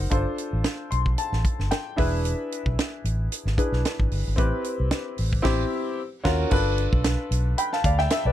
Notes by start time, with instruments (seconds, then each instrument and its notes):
Already playing: grand piano D#4 F#4 A#4 C5
0.00 fingered electric bass F#1
0.10 fingered electric bass G1, grand piano D4 F4 A4 C5, kick, closed hi-hat
0.38 closed hi-hat
0.53 fingered electric bass A1
0.64 snare, closed hi-hat
0.91 fingered electric bass B1, grand piano C6, closed hi-hat
1.06 kick
1.18 grand piano A5, closed hi-hat
1.33 fingered electric bass A1, snare
1.45 kick, closed hi-hat
1.59 fingered electric bass G1, snare
1.71 grand piano G5, snare, closed hi-hat
1.96 fingered electric bass E1, grand piano D4 E4 G#4 B4 E5, kick, open hi-hat
2.25 closed hi-hat
2.52 closed hi-hat
2.66 fingered electric bass B1, kick
2.79 snare, closed hi-hat
3.05 fingered electric bass A1, closed hi-hat
3.32 closed hi-hat
3.45 fingered electric bass G#1, snare
3.58 grand piano D4 E4 G#4 B4, kick, closed hi-hat
3.72 fingered electric bass B1, snare
3.85 snare, closed hi-hat
3.99 fingered electric bass G#1, kick
4.11 fingered electric bass G1, open hi-hat
4.27 fingered electric bass G#1
4.36 fingered electric bass A1, grand piano C4 E4 G4 B4, kick, closed hi-hat
4.64 closed hi-hat
4.80 fingered electric bass C2
4.91 snare, closed hi-hat
5.18 fingered electric bass A1, open hi-hat
5.33 kick
5.42 fingered electric bass A1, grand piano C4 E4 G4, kick, snare, crash
6.24 fingered electric bass D#2, grand piano C#4 F4 F#4 A#4, kick, snare, crash
6.50 fingered electric bass G1, grand piano D4 F4 A4 B4, kick, crash
6.78 closed hi-hat
6.93 fingered electric bass B1, kick
7.04 snare, closed hi-hat
7.31 fingered electric bass B1, closed hi-hat
7.58 grand piano G5 B5, closed hi-hat
7.73 grand piano F5 A5, snare
7.84 fingered electric bass D2, grand piano D5 F5, kick, closed hi-hat
7.99 grand piano E5 G5, snare
8.10 grand piano E5, snare, closed hi-hat
8.25 fingered electric bass B1, grand piano B4 D5